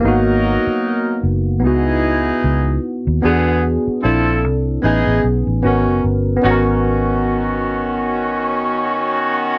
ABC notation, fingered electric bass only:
X:1
M:4/4
L:1/16
Q:"Swing 16ths" 1/4=75
K:G#m
V:1 name="Fingered electric bass" clef=bass
G,,,3 z3 F,,,2 C,,4 C,,2 z D,, | E,,3 z A,,,2 ^B,,,2 =A,,, A,,, =B,,, A,,, G,,, F,,, =G,,,2 | G,,,16 |]